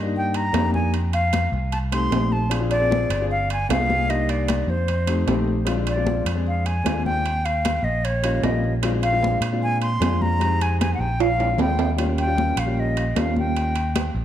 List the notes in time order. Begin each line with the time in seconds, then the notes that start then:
Already playing: G2
0.02 A#3 D4 D#4 G4
0.16 G5, high conga
0.34 A#5, high conga, high timbale
0.52 F2 A#3 D4 D#4 G4, high conga, high timbale, low timbale
0.74 G#5, high conga
0.94 high conga, high timbale
1.13 F5, high conga, high timbale
1.33 high conga, high timbale, low timbale
1.52 C2, high conga
1.72 A5, high conga, high timbale
1.92 A3 C4 D#4 G4 C6, high conga, high timbale
2.10 A#1 A3 C4 D#4 G4, high conga, high timbale, low timbale
2.32 A5, high conga
2.50 C4 D4 F4 G#4, high conga, high timbale
2.60 C4 D4 F4 G#4
2.71 D5, high conga, high timbale
2.79 C4 D4 F4 G#4
2.90 C4 D4 F4 G#4, high conga, low timbale
3.10 G1, high conga, high timbale
3.20 C4 D4 F4 G#4
3.31 F5, high conga
3.50 G#5, high conga, high timbale
3.69 C2 B3 D4 F4 G#4 F5, high conga, high timbale, low timbale
3.90 high conga
4.08 A#3 D4 D#4 G4 D#5, high conga, high timbale
4.29 D5, high conga, high timbale
4.48 high conga, high timbale, low timbale
4.67 F2 C5, high conga
4.88 high conga, high timbale
5.07 A3 C4 D#4 G4, high conga, high timbale
5.27 A#1 A3 C4 D#4 G4, high conga, high timbale, low timbale
5.48 high conga
5.65 G#3 C4 D4 F4, high conga, high timbale
5.75 G#3 C4 D4 F4
5.87 D5, high conga, high timbale
5.96 G#3 C4 D4 F4
6.05 G#3 C4 D4 F4, high conga, low timbale
6.25 F2, high conga, high timbale
6.35 G#3 C4 D4 G#4
6.47 F5, high conga
6.66 G#5, high conga, high timbale
6.84 D#2 G#3 C4 D4 F4, high conga, high timbale, low timbale
7.06 G5, high conga
7.26 high timbale
7.45 F5, high conga, high timbale
7.65 high conga, high timbale, low timbale
7.83 A#1 D#5, high conga
8.05 C#5, high conga, high timbale
8.22 G3 A#3 C#4 F4, high conga, high timbale
8.42 A#1 G3 A#3 C#4 F4 D#5, high conga, high timbale, low timbale
8.64 high conga
8.82 G#3 C4 D4 F4, high conga, high timbale
8.92 G#3 C4 D4 F4
9.03 F5, high conga, high timbale
9.12 G#3 C4 D4 F4
9.21 G#3 C4 D4 F4, high conga, low timbale
9.41 A#2, high conga, high timbale
9.52 G#3 C4 D4 F4
9.63 G#5, high conga
9.82 C6, high conga, high timbale
10.00 F2 G#3 C4 D4 F4, high conga, high timbale, low timbale
10.22 A#5, high conga
10.39 G#3 C4 D#4 G4, high conga, high timbale
10.61 G#5, high conga, high timbale
10.81 G#5, high conga, high timbale, low timbale
10.94 F#5
10.99 A#1 G5, high conga
11.20 F5, high conga, high timbale
11.38 G#3 C4 D4 F4, high conga, high timbale
11.58 D#2 G#3 C4 D4 F4 G5, high conga, low timbale
11.79 high conga, low timbale
11.97 G3 A#3 C#4 F4, high conga, high timbale
12.06 G3 A#3 C#4 F4
12.18 G5, high conga, high timbale
12.25 G3 A#3 C#4 F4
12.36 G3 A#3 C#4 F4, high conga, low timbale
12.56 A#1 F5, high conga, high timbale
12.65 G3 A#3 C#4 F4
12.77 D#5, high conga
12.97 high conga, high timbale
13.15 D#2 G3 A#3 C#4 F4, high conga, high timbale, low timbale
13.20 F5
13.36 G5, high conga
13.56 high conga, high timbale
13.76 high conga, high timbale
13.96 high conga, high timbale, low timbale
14.15 A#1, high conga